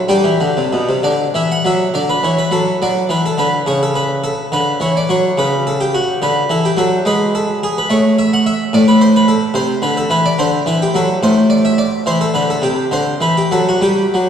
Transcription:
0.09 G3 D4 G4
0.24 E3
0.40 D3
0.57 C3
0.73 B2
0.89 C3
1.03 D3 D5
1.34 E3 E5
1.52 F#5
1.65 F#3 E5
1.94 D3 D5
2.10 B4
2.23 E3 C#5
2.39 B4
2.51 F#3 A4
2.82 F#3 D5
3.09 E3 B4
3.26 A4
3.38 D3 B4
3.66 C#3 C#5
3.83 A4
3.96 B4
4.24 A4
4.52 D3 B4
4.80 E3 C#5
4.97 D5
5.09 F#3 C#5
5.38 C#3 B4
5.67 A4
5.81 G4
5.95 F#4
6.22 D3 B4
6.50 E3 A4
6.65 G4
6.77 F#3 A4
7.05 G#3 B4
7.35 A4
7.63 G#4
7.78 B4
7.90 A3 C#5
8.19 E5
8.33 F#5
8.46 E5
8.73 A2 D5
8.88 B4
9.01 C5
9.16 B4
9.28 A4
9.54 C3 C5
9.82 D3 B4
9.97 A4
10.10 E3 B4
10.26 D5
10.39 D3 C5
10.66 E3 B4
10.82 G4
10.94 F#3 A4
11.23 A2 C5
11.50 D5
11.65 E5
11.78 D5
12.06 E3 C5
12.21 A4
12.34 D3 B4
12.50 A4
12.62 C3 G4
12.91 D3 C5
13.21 E3 B4
13.37 G4
13.51 F#3 A4
13.69 F#4
13.81 G3 G4
14.14 F#3

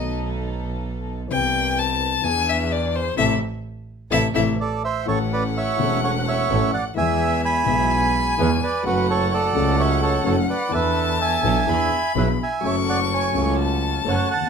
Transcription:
Already playing: B1 B2 D#3 A3 B3 D#4 F#4 A4 D#5
1.28 C2 C3 E3 B3 C4 E4 G4 B4 G5
1.78 A5
2.21 E2 E3 B3 D4 E4 G#4 G#5
2.26 G#4
2.49 E5
2.72 D5
2.96 C5
3.16 A1 C3 E3 A3 C4 E4 A4 E5
4.10 A1 C3 E3 A3 C4 E4 A4 E5
4.34 A1 C3 E3 A3 C4 E4 A4 E5
4.61 A4 D5
4.84 C5 E5
5.05 A1 A2 E3 A3 C#4 E4 A4 C#5 F#5
5.09 A4
5.33 B4 D5
5.57 C#5 E5
5.76 E1 E2 E3 A3 C#4 E4 A4
5.81 A4
6.04 C#5 F#5
6.19 F#5
6.28 C#5 E5
6.49 A1 A2 E3 A3 C#4 E4 A4
6.74 D5 F#5
6.95 E2 E3 G#3 B3 E4 G#4 E5 G#5
7.45 G#5 B5
7.63 B1 B2 E3 G#3 B3
7.68 B1 B3 E4 G#4
7.91 G#5
8.37 E2 E3 G#3 B3 E4 G#4 B4
8.63 B4 D5
8.83 F#1 F#2 F#3 A3 C#4 F#4 A4 B4 F#5
8.87 A4
9.10 A4 C#5
9.34 A4 D5
9.53 C#2 C#3 F#3 A3 C#4 F#4 A4
9.80 C#5 E5
10.02 A4 C#5
10.24 F#1 F#2 F#3 A3 C#4 F#4 A4 C#5
10.50 B4 D5
10.69 E2 E3 B3 D4 E4 A4 A5
10.73 A4 B4 E5
11.21 E5 G#5
11.43 B1 B2 E3 B3 D4 E4 A4
11.66 E2 E3 B3 D4 E4 G#4 B5
12.15 B1 B2 E3 B3 D4 E4 G#4 B4 E5
12.43 E5 G#5
12.61 F#1 F#2 F#3 A3 C#4 F#4 A4 C#6
12.65 A4 C#5 E5
12.89 D5 F#5
13.14 C#5 G#5
13.32 C#2 C#3 F#3 A3 C#4 F#4 A4
13.36 A4
13.58 A5
14.04 F#1 F#2 F#3 A3 C#4 F#4 A4 C#5
14.10 F#5
14.31 D#2 F#5 A5
14.41 E2

